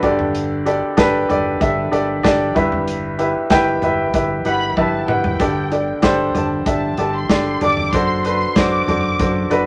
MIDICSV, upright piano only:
0, 0, Header, 1, 2, 480
1, 0, Start_track
1, 0, Key_signature, 1, "major"
1, 0, Tempo, 632111
1, 260, Time_signature, 4, 2, 24, 8
1, 7337, End_track
2, 0, Start_track
2, 0, Title_t, "Upright piano"
2, 0, Program_c, 0, 0
2, 0, Control_c, 0, 64, 127
2, 0, Note_on_c, 0, 76, 70
2, 20, Note_on_c, 0, 62, 94
2, 23, Note_on_c, 0, 67, 84
2, 24, Note_on_c, 0, 50, 78
2, 25, Note_on_c, 0, 43, 75
2, 25, Note_on_c, 0, 69, 82
2, 29, Note_on_c, 0, 74, 100
2, 31, Control_c, 0, 64, 0
2, 158, Control_c, 0, 64, 127
2, 230, Note_off_c, 0, 76, 0
2, 405, Note_off_c, 0, 62, 0
2, 406, Note_off_c, 0, 67, 0
2, 407, Note_off_c, 0, 69, 0
2, 409, Note_off_c, 0, 74, 0
2, 498, Note_on_c, 0, 62, 82
2, 500, Note_on_c, 0, 67, 81
2, 503, Note_on_c, 0, 69, 77
2, 506, Note_on_c, 0, 74, 90
2, 691, Note_off_c, 0, 62, 0
2, 692, Note_off_c, 0, 67, 0
2, 694, Note_off_c, 0, 69, 0
2, 695, Note_off_c, 0, 74, 0
2, 712, Note_off_c, 0, 43, 0
2, 712, Note_off_c, 0, 50, 0
2, 736, Note_on_c, 0, 62, 118
2, 737, Note_on_c, 0, 67, 104
2, 740, Note_on_c, 0, 69, 106
2, 744, Note_on_c, 0, 71, 124
2, 930, Note_off_c, 0, 62, 0
2, 931, Note_off_c, 0, 67, 0
2, 932, Note_off_c, 0, 69, 0
2, 935, Note_off_c, 0, 71, 0
2, 977, Note_on_c, 0, 62, 83
2, 982, Note_on_c, 0, 67, 79
2, 983, Note_on_c, 0, 69, 81
2, 988, Note_on_c, 0, 74, 98
2, 1171, Note_off_c, 0, 62, 0
2, 1173, Note_off_c, 0, 67, 0
2, 1174, Note_off_c, 0, 69, 0
2, 1176, Note_off_c, 0, 74, 0
2, 1216, Note_on_c, 0, 62, 82
2, 1218, Note_on_c, 0, 67, 80
2, 1221, Note_on_c, 0, 69, 77
2, 1227, Note_on_c, 0, 76, 101
2, 1410, Note_off_c, 0, 62, 0
2, 1411, Note_off_c, 0, 67, 0
2, 1413, Note_off_c, 0, 69, 0
2, 1416, Note_off_c, 0, 76, 0
2, 1453, Note_on_c, 0, 62, 88
2, 1456, Note_on_c, 0, 67, 83
2, 1457, Note_on_c, 0, 69, 80
2, 1461, Note_on_c, 0, 74, 101
2, 1649, Note_off_c, 0, 62, 0
2, 1650, Note_off_c, 0, 67, 0
2, 1651, Note_off_c, 0, 69, 0
2, 1653, Note_off_c, 0, 74, 0
2, 1696, Note_on_c, 0, 62, 115
2, 1698, Note_on_c, 0, 67, 100
2, 1702, Note_on_c, 0, 69, 97
2, 1705, Note_on_c, 0, 74, 116
2, 1890, Note_off_c, 0, 62, 0
2, 1891, Note_off_c, 0, 67, 0
2, 1894, Note_off_c, 0, 69, 0
2, 1895, Note_off_c, 0, 74, 0
2, 1933, Note_on_c, 0, 64, 88
2, 1938, Note_on_c, 0, 67, 86
2, 1939, Note_on_c, 0, 43, 74
2, 1940, Note_on_c, 0, 71, 84
2, 1941, Note_on_c, 0, 55, 74
2, 1944, Note_on_c, 0, 76, 101
2, 1949, Control_c, 0, 64, 0
2, 2074, Control_c, 0, 64, 127
2, 2321, Note_off_c, 0, 64, 0
2, 2324, Note_off_c, 0, 67, 0
2, 2325, Note_off_c, 0, 71, 0
2, 2326, Note_off_c, 0, 76, 0
2, 2419, Note_on_c, 0, 64, 84
2, 2421, Note_on_c, 0, 67, 74
2, 2423, Note_on_c, 0, 71, 78
2, 2428, Note_on_c, 0, 76, 85
2, 2612, Note_off_c, 0, 64, 0
2, 2613, Note_off_c, 0, 67, 0
2, 2614, Note_off_c, 0, 71, 0
2, 2617, Note_off_c, 0, 76, 0
2, 2629, Note_off_c, 0, 43, 0
2, 2631, Note_off_c, 0, 55, 0
2, 2659, Note_on_c, 0, 64, 112
2, 2662, Note_on_c, 0, 67, 101
2, 2666, Note_on_c, 0, 71, 104
2, 2669, Note_on_c, 0, 79, 127
2, 2852, Note_off_c, 0, 64, 0
2, 2854, Note_off_c, 0, 67, 0
2, 2855, Note_off_c, 0, 71, 0
2, 2857, Note_off_c, 0, 79, 0
2, 2904, Note_on_c, 0, 64, 83
2, 2907, Note_on_c, 0, 67, 81
2, 2910, Note_on_c, 0, 71, 76
2, 2914, Note_on_c, 0, 76, 98
2, 3094, Note_off_c, 0, 64, 0
2, 3096, Note_off_c, 0, 67, 0
2, 3097, Note_off_c, 0, 71, 0
2, 3099, Note_off_c, 0, 76, 0
2, 3141, Note_on_c, 0, 64, 83
2, 3147, Note_on_c, 0, 67, 77
2, 3149, Note_on_c, 0, 71, 73
2, 3152, Note_on_c, 0, 76, 87
2, 3333, Note_off_c, 0, 64, 0
2, 3336, Note_off_c, 0, 67, 0
2, 3337, Note_off_c, 0, 71, 0
2, 3338, Note_off_c, 0, 76, 0
2, 3379, Note_on_c, 0, 64, 74
2, 3382, Note_on_c, 0, 67, 70
2, 3387, Note_on_c, 0, 71, 67
2, 3391, Note_on_c, 0, 78, 83
2, 3572, Note_off_c, 0, 64, 0
2, 3573, Note_off_c, 0, 67, 0
2, 3576, Note_off_c, 0, 71, 0
2, 3578, Note_off_c, 0, 78, 0
2, 3619, Note_on_c, 0, 64, 88
2, 3623, Note_on_c, 0, 67, 81
2, 3624, Note_on_c, 0, 71, 73
2, 3627, Note_on_c, 0, 76, 97
2, 3812, Note_off_c, 0, 64, 0
2, 3814, Note_off_c, 0, 67, 0
2, 3815, Note_off_c, 0, 71, 0
2, 3816, Note_off_c, 0, 76, 0
2, 3856, Note_on_c, 0, 64, 64
2, 3859, Note_on_c, 0, 67, 66
2, 3861, Note_on_c, 0, 71, 65
2, 3865, Note_on_c, 0, 78, 80
2, 4051, Note_off_c, 0, 64, 0
2, 4052, Note_off_c, 0, 67, 0
2, 4053, Note_off_c, 0, 71, 0
2, 4055, Note_off_c, 0, 78, 0
2, 4096, Note_on_c, 0, 62, 91
2, 4098, Note_on_c, 0, 67, 82
2, 4100, Note_on_c, 0, 43, 59
2, 4100, Note_on_c, 0, 50, 62
2, 4103, Note_on_c, 0, 69, 84
2, 4105, Note_on_c, 0, 74, 100
2, 4110, Control_c, 0, 64, 0
2, 4236, Control_c, 0, 64, 127
2, 4290, Note_off_c, 0, 62, 0
2, 4292, Note_off_c, 0, 67, 0
2, 4294, Note_off_c, 0, 69, 0
2, 4295, Note_off_c, 0, 74, 0
2, 4339, Note_on_c, 0, 62, 67
2, 4342, Note_on_c, 0, 67, 60
2, 4342, Note_on_c, 0, 69, 59
2, 4345, Note_on_c, 0, 74, 72
2, 4532, Note_off_c, 0, 62, 0
2, 4533, Note_off_c, 0, 67, 0
2, 4533, Note_off_c, 0, 69, 0
2, 4535, Note_off_c, 0, 74, 0
2, 4573, Note_on_c, 0, 62, 111
2, 4577, Note_on_c, 0, 67, 105
2, 4581, Note_on_c, 0, 69, 101
2, 4584, Note_on_c, 0, 72, 122
2, 4769, Note_off_c, 0, 62, 0
2, 4771, Note_off_c, 0, 67, 0
2, 4773, Note_off_c, 0, 69, 0
2, 4774, Note_off_c, 0, 72, 0
2, 4790, Note_off_c, 0, 43, 0
2, 4790, Note_off_c, 0, 50, 0
2, 4816, Note_on_c, 0, 62, 72
2, 4819, Note_on_c, 0, 67, 63
2, 4822, Note_on_c, 0, 69, 61
2, 4824, Note_on_c, 0, 74, 78
2, 5010, Note_off_c, 0, 62, 0
2, 5012, Note_off_c, 0, 67, 0
2, 5014, Note_off_c, 0, 69, 0
2, 5014, Note_off_c, 0, 74, 0
2, 5054, Note_on_c, 0, 62, 76
2, 5057, Note_on_c, 0, 67, 69
2, 5061, Note_on_c, 0, 69, 64
2, 5066, Note_on_c, 0, 76, 76
2, 5250, Note_off_c, 0, 62, 0
2, 5251, Note_off_c, 0, 67, 0
2, 5253, Note_off_c, 0, 69, 0
2, 5255, Note_off_c, 0, 76, 0
2, 5301, Note_on_c, 0, 62, 71
2, 5301, Note_on_c, 0, 67, 69
2, 5304, Note_on_c, 0, 69, 67
2, 5308, Note_on_c, 0, 74, 77
2, 5493, Note_off_c, 0, 62, 0
2, 5493, Note_off_c, 0, 67, 0
2, 5495, Note_off_c, 0, 69, 0
2, 5497, Note_off_c, 0, 74, 0
2, 5537, Note_on_c, 0, 62, 95
2, 5542, Note_on_c, 0, 67, 79
2, 5545, Note_on_c, 0, 69, 75
2, 5548, Note_on_c, 0, 74, 96
2, 5731, Note_off_c, 0, 62, 0
2, 5733, Note_off_c, 0, 67, 0
2, 5735, Note_off_c, 0, 69, 0
2, 5737, Note_off_c, 0, 74, 0
2, 5780, Note_on_c, 0, 62, 70
2, 5784, Note_on_c, 0, 67, 68
2, 5784, Note_on_c, 0, 69, 67
2, 5789, Note_on_c, 0, 74, 81
2, 5973, Note_off_c, 0, 62, 0
2, 5974, Note_off_c, 0, 69, 0
2, 5975, Note_off_c, 0, 67, 0
2, 5977, Note_off_c, 0, 74, 0
2, 6023, Note_on_c, 0, 62, 88
2, 6024, Note_on_c, 0, 66, 81
2, 6026, Note_on_c, 0, 54, 62
2, 6029, Note_on_c, 0, 69, 82
2, 6030, Control_c, 0, 64, 0
2, 6031, Note_on_c, 0, 72, 100
2, 6161, Control_c, 0, 64, 127
2, 6214, Note_off_c, 0, 62, 0
2, 6214, Note_off_c, 0, 66, 0
2, 6217, Note_off_c, 0, 69, 0
2, 6218, Note_off_c, 0, 72, 0
2, 6262, Note_on_c, 0, 62, 68
2, 6265, Note_on_c, 0, 66, 61
2, 6269, Note_on_c, 0, 69, 63
2, 6271, Note_on_c, 0, 71, 77
2, 6453, Note_off_c, 0, 62, 0
2, 6455, Note_off_c, 0, 66, 0
2, 6457, Note_off_c, 0, 69, 0
2, 6458, Note_off_c, 0, 71, 0
2, 6496, Note_on_c, 0, 62, 99
2, 6500, Note_on_c, 0, 66, 83
2, 6503, Note_on_c, 0, 69, 84
2, 6506, Note_on_c, 0, 72, 101
2, 6690, Note_off_c, 0, 62, 0
2, 6692, Note_off_c, 0, 66, 0
2, 6694, Note_off_c, 0, 69, 0
2, 6695, Note_off_c, 0, 72, 0
2, 6713, Note_off_c, 0, 54, 0
2, 6741, Note_on_c, 0, 62, 67
2, 6742, Note_on_c, 0, 66, 67
2, 6747, Note_on_c, 0, 69, 69
2, 6749, Note_on_c, 0, 72, 76
2, 6933, Note_off_c, 0, 62, 0
2, 6933, Note_off_c, 0, 66, 0
2, 6936, Note_off_c, 0, 69, 0
2, 6937, Note_off_c, 0, 72, 0
2, 6979, Note_on_c, 0, 62, 75
2, 6982, Note_on_c, 0, 66, 68
2, 6987, Note_on_c, 0, 69, 66
2, 6988, Note_on_c, 0, 72, 80
2, 7172, Note_off_c, 0, 62, 0
2, 7173, Note_off_c, 0, 66, 0
2, 7176, Note_off_c, 0, 69, 0
2, 7176, Note_off_c, 0, 72, 0
2, 7214, Note_on_c, 0, 62, 92
2, 7219, Note_on_c, 0, 66, 82
2, 7221, Note_on_c, 0, 69, 79
2, 7222, Note_on_c, 0, 71, 105
2, 7337, Note_off_c, 0, 62, 0
2, 7337, Note_off_c, 0, 66, 0
2, 7337, Note_off_c, 0, 69, 0
2, 7337, Note_off_c, 0, 71, 0
2, 7337, End_track
0, 0, End_of_file